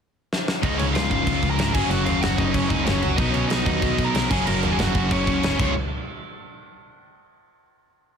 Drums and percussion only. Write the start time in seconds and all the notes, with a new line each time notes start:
0.33 snare
0.48 snare
0.63 kick, crash
0.79 crash
0.95 snare, crash
1.11 kick, crash
1.27 kick, crash
1.43 kick, crash
1.59 snare, crash
1.75 kick, crash
1.91 crash
2.06 crash
2.22 snare, crash
2.38 kick, crash
2.54 kick, crash
2.70 kick, crash
2.86 snare, crash
3.02 crash
3.18 kick, crash
3.34 crash
3.50 snare, crash
3.66 kick, crash
3.82 kick, crash
3.98 kick, crash
4.15 snare, crash
4.31 kick, crash
4.47 crash
4.63 crash
4.79 snare, crash
4.94 kick, crash
5.11 kick, crash
5.27 kick, crash
5.43 snare, crash
5.59 kick, crash